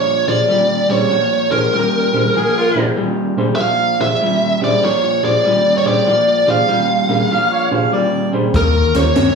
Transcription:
Already playing: A#2 F3 C#5
0.27 A#2 F3 D4 G4 G#4 C5 D5
0.48 A#2 G3
0.89 A#2 G3 D4 G4 G#4 C5 C#5
1.10 A#2 F3
1.51 A#2 F3 D4 G4 G#4 A#4 C5
1.73 A#2 G3
2.13 A#2 G3 D4 G4 G#4 C5
2.35 A#2 F3 G#4
2.58 F4
2.76 A#2 F3 D4 G4 G#4 C5
2.96 A#2 G3
3.38 A#2 G3 D4 G4 G#4 C5
3.56 A#2 F3 E5
3.60 F5
3.99 A#2 F3 D4 G4 G#4 C5 E5
4.21 A#2 G3
4.61 A#2 G3 D4 G4 G#4 C5 D5
4.82 A#2 F3 C#5
5.22 A#2 F3 D4 G4 G#4 C5 D5
5.45 A#2 G3
5.78 C#5
5.85 A#2 G3 D4 G4 G#4 C5 D5
6.06 A#2 F3
6.46 A#2 F3 D4 G4 G#4 C5 F5
6.68 A#2 G3
7.09 A#2 G3 D4 G4 G#4 A#4
7.31 A#2 F3 F5
7.52 C#5
7.71 A#2 F3 D4 G4 G#4 C5 F5
7.92 A#2 G3 D5
8.33 A#2 G3 D4 G4 G#4 C5
8.54 D#2 D#3 A#3 A#4, kick, snare, closed hi-hat
8.95 D#2 D#3 A#3 C#4 F4 G4 C5 C#5, snare, closed hi-hat
9.16 G2 D#3 C4, snare, closed hi-hat

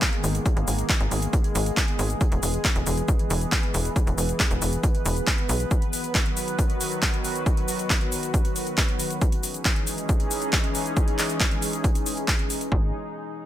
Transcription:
Already playing: D#3 G#3 A#3 B3 G#4
0.02 kick, clap, closed hi-hat, shaker
0.13 closed hi-hat
0.24 G#1, open hi-hat, shaker
0.35 closed hi-hat, shaker
0.46 kick, closed hi-hat, shaker
0.57 G#1, closed hi-hat
0.68 G#1, open hi-hat, shaker
0.79 closed hi-hat, shaker
0.89 kick, clap, closed hi-hat, shaker
1.00 G#1, closed hi-hat
1.11 G#1, open hi-hat, shaker
1.22 closed hi-hat, shaker
1.33 kick, closed hi-hat, shaker
1.44 closed hi-hat
1.55 G#1, open hi-hat, shaker
1.66 closed hi-hat, shaker
1.77 kick, clap, closed hi-hat, shaker
1.88 closed hi-hat
1.99 G#1, open hi-hat, shaker
2.10 closed hi-hat, shaker
2.21 E3 B4, kick, closed hi-hat, shaker
2.32 E1, closed hi-hat
2.43 E1, open hi-hat, shaker
2.54 closed hi-hat, shaker
2.65 kick, clap, closed hi-hat, shaker
2.75 E1, closed hi-hat
2.86 E1, open hi-hat, shaker
2.97 closed hi-hat, shaker
3.08 kick, closed hi-hat, shaker
3.19 closed hi-hat
3.30 E1, open hi-hat, shaker
3.41 closed hi-hat, shaker
3.52 kick, clap, closed hi-hat, shaker
3.63 closed hi-hat
3.74 E1, open hi-hat, shaker
3.85 closed hi-hat, shaker
3.96 kick, closed hi-hat, shaker
4.07 E1, closed hi-hat, shaker
4.18 E1, open hi-hat, shaker
4.29 closed hi-hat, shaker
4.40 kick, clap, closed hi-hat, shaker
4.51 E1, closed hi-hat, shaker
4.62 E1, open hi-hat, shaker
4.73 closed hi-hat, shaker
4.83 kick, closed hi-hat, shaker
4.95 closed hi-hat
5.05 E1, open hi-hat, shaker
5.17 closed hi-hat, shaker
5.27 kick, clap, closed hi-hat, shaker
5.38 closed hi-hat
5.49 B1, open hi-hat, shaker
5.60 closed hi-hat, shaker
5.71 D#3 F#3 F#4, kick, closed hi-hat, shaker
5.82 closed hi-hat
5.93 open hi-hat, shaker
6.04 closed hi-hat, shaker
6.15 kick, clap, closed hi-hat, shaker
6.26 closed hi-hat
6.37 open hi-hat, shaker
6.48 closed hi-hat, shaker
6.59 kick, closed hi-hat, shaker
6.70 closed hi-hat
6.81 open hi-hat, shaker
6.92 closed hi-hat, shaker
7.02 kick, clap, closed hi-hat, shaker
7.14 closed hi-hat
7.25 open hi-hat, shaker
7.36 closed hi-hat, shaker
7.46 kick, closed hi-hat, shaker
7.57 closed hi-hat
7.68 open hi-hat, shaker
7.79 closed hi-hat, shaker
7.90 kick, clap, closed hi-hat, shaker
8.01 closed hi-hat
8.12 open hi-hat, shaker
8.23 closed hi-hat, shaker
8.34 kick, closed hi-hat, shaker
8.45 closed hi-hat
8.56 open hi-hat, shaker
8.67 closed hi-hat, shaker
8.78 kick, clap, closed hi-hat, shaker
8.89 closed hi-hat
8.99 open hi-hat, shaker
9.10 closed hi-hat, shaker
9.21 E3 G#3 C#4 D#4 G#4, kick, closed hi-hat, shaker
9.32 closed hi-hat
9.43 open hi-hat, shaker
9.54 closed hi-hat, shaker
9.65 kick, clap, closed hi-hat, shaker
9.76 closed hi-hat
9.87 open hi-hat, shaker
9.98 closed hi-hat, shaker
10.09 kick, closed hi-hat, shaker
10.20 closed hi-hat
10.31 open hi-hat, shaker
10.42 closed hi-hat, shaker
10.53 kick, clap, closed hi-hat, shaker
10.64 closed hi-hat
10.75 open hi-hat, shaker
10.86 closed hi-hat, shaker
10.97 kick, closed hi-hat, shaker
11.08 closed hi-hat
11.19 clap, open hi-hat, shaker
11.30 closed hi-hat, shaker
11.40 kick, clap, closed hi-hat, shaker
11.51 closed hi-hat
11.62 open hi-hat, shaker
11.73 closed hi-hat, shaker
11.84 kick, closed hi-hat, shaker
11.95 closed hi-hat, shaker
12.06 open hi-hat, shaker
12.17 closed hi-hat, shaker
12.28 kick, clap, closed hi-hat, shaker
12.39 closed hi-hat
12.50 open hi-hat, shaker
12.61 closed hi-hat, shaker
12.72 G#1, kick

